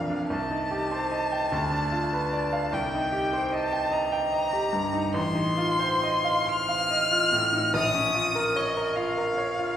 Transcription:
0.00 0.24 A#1 medium
0.00 0.21 F2 soft
0.00 0.10 D4 soft
0.00 0.32 A#4 medium
0.00 0.31 D5 medium
0.00 0.27 F5 medium
0.10 0.30 D4 medium
0.28 1.48 C2 medium
0.28 2.75 A5 medium
0.50 0.82 D#4 medium
0.71 1.03 G4 medium
0.91 1.23 C5 medium
1.11 1.43 D#5 medium
1.32 1.51 G5 medium
1.52 2.70 D2 medium
1.72 2.04 D4 medium
1.92 2.25 F4 medium
2.13 2.45 B4 medium
2.33 2.65 D5 medium
2.53 2.73 F5 medium
2.72 5.11 C2 medium
2.72 3.55 G5 medium
2.94 3.25 D#4 medium
3.12 3.45 G4 medium
3.33 3.65 C5 medium
3.52 3.84 D#5 medium
3.52 3.93 A5 medium
3.72 4.05 G5 medium
3.91 4.24 D#5 medium
3.91 5.14 A#5 medium
4.12 4.45 G5 medium
4.32 4.65 D#5 medium
4.53 4.86 G4 medium
4.73 5.06 G2 medium
4.93 5.15 D#4 medium
5.14 7.69 A1 medium
5.14 6.51 C6 loud
5.35 5.71 D#4 medium
5.58 5.94 F4 medium
5.79 6.16 C5 medium
6.03 6.39 D#5 medium
6.24 6.60 F5 medium
6.47 6.82 C6 medium
6.47 7.74 F6 loud
6.69 7.03 F5 medium
6.90 7.24 D#5 medium
7.11 7.45 F4 medium
7.32 7.66 A2 medium
7.53 7.74 D#4 medium
7.74 9.77 A#1 medium
7.74 8.58 D#6 loud
7.94 8.27 C#4 medium
8.14 8.47 F4 medium
8.35 8.68 A#4 medium
8.56 8.88 C#5 medium
8.56 8.97 D#5 medium
8.77 9.09 A#4 medium
8.96 9.30 F4 medium
8.96 9.77 F5 medium
9.17 9.51 A#4 medium
9.38 9.71 C#5 medium
9.59 9.77 F4 medium

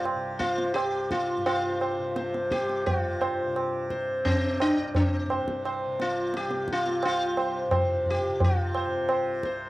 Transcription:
0.00 0.75 C2 medium
0.00 1.36 G2 medium
0.00 0.15 C3 medium
0.05 tabla na medium
0.15 1.98 C3 medium
0.39 0.74 F4 medium
0.39 0.72 C5 soft
0.39 tabla ke medium
0.58 tabla te medium
0.74 4.67 C2 medium
0.74 1.11 G4 medium
0.74 tabla na medium
1.11 1.45 F4 medium
1.11 tabla ke medium
1.37 2.86 G2 medium
1.46 2.51 F4 medium
1.46 1.78 C5 soft
1.46 tabla na medium
1.81 2.14 C5 soft
1.81 tabla na medium
1.98 2.60 C3 soft
2.16 2.49 C5 soft
2.16 tabla te medium
2.34 tabla te medium
2.50 2.86 G4 medium
2.50 2.83 C5 soft
2.50 tabla ke medium
2.60 3.47 C3 medium
2.69 tabla te medium
2.86 5.27 G2 medium
2.86 3.87 F4 medium
2.86 tabla tin medium
2.86 tabla ge medium
3.21 3.53 C5 soft
3.21 tabla na medium
3.47 4.07 C3 medium
3.56 tabla na medium
3.90 4.23 C5 soft
3.90 tabla ke medium
4.07 5.87 C3 medium
4.25 4.61 C4 medium
4.25 tabla tin medium
4.25 tabla ge medium
4.60 4.96 D4 medium
4.60 tabla na medium
4.67 7.06 C2 medium
4.95 5.61 C4 medium
4.95 tabla tin medium
4.95 tabla ge medium
5.27 7.67 G2 medium
5.27 tabla na medium
5.31 5.63 C5 soft
5.48 tabla ke medium
5.65 5.97 C5 soft
5.65 tabla na medium
5.87 6.48 C3 medium
6.00 6.36 F4 medium
6.00 tabla te medium
6.34 6.71 G4 medium
6.34 tabla te medium
6.48 8.27 C3 medium
6.48 tabla te medium
6.68 tabla ke medium
6.73 7.04 F4 medium
6.86 tabla te medium
7.03 9.45 C2 medium
7.03 8.10 F4 medium
7.03 tabla na medium
7.37 7.70 C5 soft
7.37 tabla na medium
7.67 9.70 G2 medium
7.71 8.04 C5 soft
7.71 tabla na medium
7.71 tabla ge medium
8.06 tabla ge medium
8.11 8.43 G4 medium
8.27 8.86 C3 medium
8.40 tabla tin medium
8.40 tabla ge medium
8.44 9.41 F4 medium
8.75 9.08 C5 soft
8.75 tabla na medium
8.86 9.70 C3 medium
9.09 9.41 C5 soft
9.09 tabla na medium
9.43 9.70 C2 medium
9.43 9.70 C5 soft
9.43 tabla ke medium

